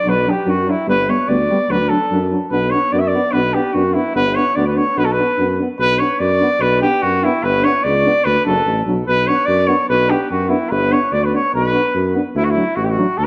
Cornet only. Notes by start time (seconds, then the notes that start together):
Already playing: D5
0.09 B4
0.29 G4
0.49 F#4
0.70 E4
0.89 B4
1.09 C#5
1.28 D5
1.70 B4
1.89 A4
2.50 B4
2.70 C#5
2.92 D5
2.99 E5
3.07 D5
3.32 B4
3.54 G4
3.73 F#4
3.93 E4
4.15 B4
4.35 C#5
4.55 D5
4.67 B4
4.76 C#5
4.98 B4
5.05 A4
5.12 B4
5.79 B4
5.98 C#5
6.19 D5
6.61 B4
6.81 G4
7.02 F#4
7.24 E4
7.44 B4
7.64 C#5
7.83 D5
8.24 B4
8.45 A4
9.07 B4
9.27 C#5
9.46 D5
9.67 C#5
9.89 B4
10.10 G4
10.30 F#4
10.49 E4
10.70 B4
10.92 C#5
11.12 D5
11.24 B4
11.34 C#5
11.55 B4
12.36 E4
12.44 F#4
12.50 E4
12.75 F#4
12.84 G4
12.90 F#4
13.17 A4